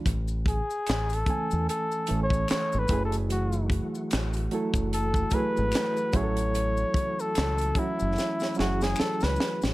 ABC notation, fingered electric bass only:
X:1
M:4/4
L:1/16
Q:"Swing 16ths" 1/4=74
K:A
V:1 name="Fingered electric bass" clef=bass
A,,,3 z A,,,2 z E,, z2 A,,,2 z G,,, F,,,2- | F,,,3 z A,,,2 z F,,,3 z G,,, z2 A,,,2- | A,,,2 z2 C,,2 z F,,, z2 F,,,2 z C,, z A,,, |]